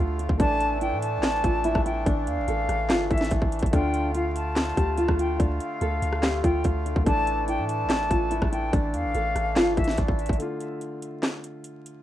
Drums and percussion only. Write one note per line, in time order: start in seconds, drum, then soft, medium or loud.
0.19 closed hi-hat medium
0.29 kick loud
0.40 kick loud
0.40 closed hi-hat medium
0.60 closed hi-hat medium
0.81 closed hi-hat medium
1.02 closed hi-hat medium
1.23 snare loud
1.23 clap medium
1.23 closed hi-hat medium
1.44 kick loud
1.44 closed hi-hat medium
1.64 closed hi-hat medium
1.75 kick medium
1.75 cross-stick loud
1.86 closed hi-hat medium
2.06 kick loud
2.06 closed hi-hat medium
2.27 closed hi-hat medium
2.48 closed hi-hat medium
2.69 cross-stick medium
2.69 closed hi-hat medium
2.89 snare loud
2.89 clap medium
2.89 closed hi-hat medium
3.11 kick loud
3.11 closed hi-hat soft
3.17 snare medium
3.17 closed hi-hat medium
3.24 closed hi-hat medium
3.31 kick medium
3.31 closed hi-hat medium
3.42 kick medium
3.52 closed hi-hat medium
3.59 kick loud
3.59 closed hi-hat medium
3.66 closed hi-hat medium
3.73 kick loud
3.73 closed hi-hat medium
3.94 closed hi-hat medium
4.15 closed hi-hat medium
4.36 closed hi-hat medium
4.56 snare loud
4.56 clap medium
4.56 closed hi-hat medium
4.77 kick loud
4.77 closed hi-hat medium
4.97 closed hi-hat medium
5.08 kick medium
5.08 cross-stick loud
5.19 closed hi-hat medium
5.40 kick loud
5.40 closed hi-hat medium
5.60 closed hi-hat medium
5.81 closed hi-hat medium
6.02 closed hi-hat medium
6.13 cross-stick loud
6.23 snare loud
6.23 clap medium
6.23 closed hi-hat medium
6.44 kick loud
6.44 closed hi-hat medium
6.64 kick medium
6.64 closed hi-hat medium
6.86 closed hi-hat medium
6.96 kick loud
7.06 kick loud
7.06 closed hi-hat medium
7.27 closed hi-hat medium
7.48 closed hi-hat medium
7.69 closed hi-hat medium
7.90 snare loud
7.90 clap medium
7.90 closed hi-hat medium
8.11 kick loud
8.11 closed hi-hat medium
8.31 closed hi-hat medium
8.42 kick medium
8.42 cross-stick loud
8.53 closed hi-hat medium
8.73 kick loud
8.73 closed hi-hat medium
8.94 closed hi-hat medium
9.15 closed hi-hat medium
9.36 cross-stick medium
9.36 closed hi-hat medium
9.56 snare loud
9.56 clap medium
9.56 closed hi-hat medium
9.77 kick loud
9.77 closed hi-hat soft
9.84 snare medium
9.84 closed hi-hat medium
9.91 closed hi-hat medium
9.97 kick medium
9.97 closed hi-hat medium
10.08 kick medium
10.19 closed hi-hat medium
10.26 kick loud
10.26 closed hi-hat medium
10.33 closed hi-hat medium
10.40 closed hi-hat medium
10.60 closed hi-hat medium
10.81 closed hi-hat medium
11.02 closed hi-hat medium
11.23 snare loud
11.23 clap medium
11.23 closed hi-hat medium
11.44 closed hi-hat medium
11.64 closed hi-hat medium
11.86 closed hi-hat medium